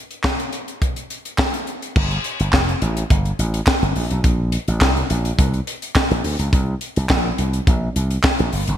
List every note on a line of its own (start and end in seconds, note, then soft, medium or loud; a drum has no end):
0.11 closed hi-hat soft
0.24 kick loud
0.24 snare loud
0.24 clap medium
0.40 closed hi-hat soft
0.53 closed hi-hat medium
0.68 closed hi-hat soft
0.82 kick loud
0.82 closed hi-hat medium
0.96 closed hi-hat medium
1.10 closed hi-hat medium
1.25 closed hi-hat soft
1.38 kick loud
1.38 snare loud
1.38 clap medium
1.54 closed hi-hat medium
1.67 closed hi-hat medium
1.82 closed hi-hat medium
1.96 2.17 G1 loud
1.96 kick loud
1.96 crash loud
2.11 closed hi-hat soft
2.24 closed hi-hat medium
2.40 2.50 G1 loud
2.40 closed hi-hat medium
2.53 2.74 F1 loud
2.53 kick loud
2.53 snare loud
2.53 clap medium
2.69 closed hi-hat soft
2.82 3.02 A1 loud
2.82 closed hi-hat medium
2.97 closed hi-hat medium
3.10 3.31 G1 medium
3.10 kick loud
3.10 closed hi-hat medium
3.25 closed hi-hat soft
3.39 3.60 A1 medium
3.39 closed hi-hat medium
3.54 closed hi-hat medium
3.67 kick loud
3.67 snare loud
3.67 clap loud
3.82 3.92 G1 loud
3.82 closed hi-hat soft
3.96 4.07 A#1 medium
3.96 open hi-hat medium
4.11 4.21 B1 loud
4.11 closed hi-hat medium
4.24 4.56 A#1 loud
4.24 kick loud
4.24 closed hi-hat medium
4.52 closed hi-hat medium
4.68 4.81 A1 loud
4.68 closed hi-hat medium
4.81 5.02 C2 loud
4.81 kick loud
4.81 snare loud
4.81 clap medium
4.97 closed hi-hat soft
5.10 5.31 A#1 loud
5.10 closed hi-hat medium
5.25 closed hi-hat soft
5.39 5.59 C2 loud
5.39 kick loud
5.39 closed hi-hat loud
5.54 closed hi-hat soft
5.67 closed hi-hat medium
5.82 closed hi-hat medium
5.95 kick loud
5.95 snare loud
5.95 clap loud
6.11 6.21 A#1 medium
6.11 closed hi-hat soft
6.24 6.35 D2 medium
6.24 open hi-hat medium
6.39 6.49 C#2 loud
6.39 closed hi-hat medium
6.53 6.74 C2 loud
6.53 kick loud
6.53 closed hi-hat medium
6.81 closed hi-hat medium
6.96 7.07 C2 loud
6.96 closed hi-hat medium
7.09 7.31 A#1 loud
7.09 kick loud
7.09 snare loud
7.09 clap medium
7.38 7.59 C2 loud
7.38 closed hi-hat medium
7.53 closed hi-hat medium
7.67 7.88 A#1 medium
7.67 kick loud
7.67 closed hi-hat medium
7.96 8.17 C2 loud
7.96 closed hi-hat medium
8.11 closed hi-hat medium
8.24 kick loud
8.24 snare loud
8.24 clap loud
8.39 8.49 A#1 loud
8.39 closed hi-hat soft
8.53 8.64 G1 medium
8.53 open hi-hat medium
8.67 8.78 F#1 loud
8.67 closed hi-hat medium